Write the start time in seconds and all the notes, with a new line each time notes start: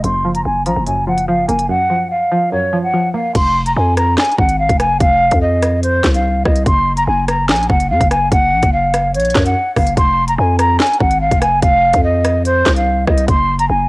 0.04 F#1 F#2 C6, closed hi-hat
0.25 F3
0.35 A#5, closed hi-hat
0.45 F#1 G#5
0.66 A#1 F3 A#5, closed hi-hat
0.76 F#1
0.87 F#2 G#5, closed hi-hat
1.07 F3 F#5
1.18 closed hi-hat
1.28 F3 F5
1.48 F#1 A#3 G#5, closed hi-hat
1.59 closed hi-hat
1.69 F#2 F#5
1.90 F3
2.11 F5
2.32 F3
2.52 F#2 C#5
2.73 F3
2.83 F#5
2.94 F3
3.14 A#3 F5
3.35 F1 C6, kick, closed hi-hat, crash
3.66 A#5, closed hi-hat
3.76 F2 G#5
3.97 A#5, cross-stick, closed hi-hat
4.18 G#5, snare, clap, closed hi-hat
4.25 closed hi-hat
4.32 closed hi-hat
4.38 G#1 F#5, kick
4.49 closed hi-hat
4.59 F5
4.69 F1, kick, closed hi-hat
4.80 G#5, cross-stick, closed hi-hat
4.90 F#1
5.00 F1 F5, kick, closed hi-hat
5.31 F2, kick, closed hi-hat
5.41 D#5
5.63 cross-stick, closed hi-hat
5.83 C5, closed hi-hat
6.04 C2, kick, snare, clap, closed hi-hat
6.14 F5, closed hi-hat
6.45 C2 D#5, kick, cross-stick
6.56 closed hi-hat
6.66 F#1 C6, kick, closed hi-hat
6.97 A#5, closed hi-hat
7.08 F#1 G#5
7.28 A#5, cross-stick, closed hi-hat
7.49 A#1 G#5, snare, clap, closed hi-hat
7.56 closed hi-hat
7.63 closed hi-hat
7.70 F#1 F#5, kick
7.80 closed hi-hat
7.90 F#2 F5
8.01 F#1, kick, closed hi-hat
8.11 G#5, cross-stick, closed hi-hat
8.32 F#1 F#5, kick, closed hi-hat
8.52 A#1
8.62 F#1, kick, closed hi-hat
8.73 F5
8.94 cross-stick, closed hi-hat
9.14 A#1 C#5, closed hi-hat
9.20 closed hi-hat
9.25 closed hi-hat
9.30 closed hi-hat
9.35 F#2, kick, snare, clap, closed hi-hat
9.46 F#5, closed hi-hat
9.76 F#1 F5, kick, cross-stick, open hi-hat
9.87 closed hi-hat
9.97 F1 C6, kick, closed hi-hat
10.28 A#5, closed hi-hat
10.38 F2 G#5
10.59 A#5, cross-stick, closed hi-hat
10.80 G#5, snare, clap, closed hi-hat
10.87 closed hi-hat
10.94 closed hi-hat
11.01 G#1 F#5, kick
11.11 closed hi-hat
11.21 F5
11.31 F1, kick, closed hi-hat
11.42 G#5, cross-stick, closed hi-hat
11.52 F#1
11.63 F1 F5, kick, closed hi-hat
11.93 F2, kick, closed hi-hat
12.04 D#5
12.25 cross-stick, closed hi-hat
12.45 C5, closed hi-hat
12.66 C2, kick, snare, clap, closed hi-hat
12.76 F5, closed hi-hat
13.07 C2 D#5, kick, cross-stick
13.18 closed hi-hat
13.28 F#1 C6, kick, closed hi-hat
13.59 A#5, closed hi-hat
13.69 F#1 G#5